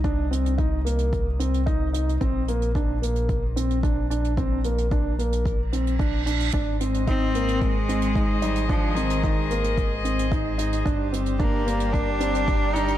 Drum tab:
HH |x-xxx-xxx-xxx-xx|x-xxx-xxx-xxx-xx|x-xxx-xxx-xxx-xx|x-xxx-xxx-xxx-xx|
BD |o---o---o---o---|o---o---o---o---|o---o---o---o---|o---o---o---o---|

HH |x-xxx-xxx-xxx-xx|x-xxx-xxx-xxx-xx|
BD |o---o---o---o---|o---o---o---o---|